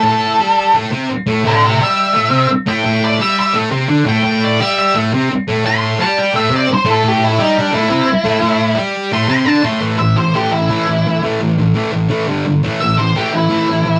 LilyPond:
<<
  \new Staff \with { instrumentName = "Lead electric guitar" } { \time 4/4 \key a \minor \tempo 4 = 172 a'2 r2 | <a' d''>8 <g' c''>8 e''2 r8 g''8~ | g''8 d''8 e''8 e''8 r4. g''8~ | g''8 d''8 e''8 e''8 r2 |
c'''4 a''8 g''8 e''8 d''8 c''8 a'8 | g'8 e'8 dis'8 d'8 e'2~ | e'4 r4 c'''8 c'''8 a''8 c'''8 | r8 e''8 c''8 g'8 e'2 |
r1 | r8 e''8 c''8 g'8 e'2 | }
  \new Staff \with { instrumentName = "Distorted electric guitar" } { \clef bass \time 4/4 \key a \minor <a, a>4 <g g'>4 <a, a>8 <c c'>8 r8 <a, a>8 | <a, a>4 <g g'>4 <a, a>8 <c c'>8 r8 <a, a>8 | <a, a>4 <g g'>4 <a, a>8 <c c'>8 <d d'>8 <a, a>8 | <a, a>4 <g g'>4 <a, a>8 <c c'>8 r8 <a, a>8 |
<a, a>4 <g g'>4 <a, a>8 <c c'>8 r8 <a, a>8 | <a, a>4 <g g'>4 <a, a>8 <c c'>8 r8 <a, a>8 | <a, a>4 <g g'>4 <a, a>8 <c c'>8 <d d'>8 <a, a>8 | <a, e a>8 <a, e>8 <a, e>8 <a, e a>8 <a, e>8 <a, e a>8 <a, e>8 <a, e>8 |
<a, e a>8 <a, e>8 <a, e>8 <a, e a>8 <a, e>8 <a, e a>8 <g, d g>8 <g, d>8 | <a, e a>8 <a, e>8 <a, e>8 <a, e a>8 <a, e>8 <a, e a>8 <a, e>8 <a, e>8 | }
>>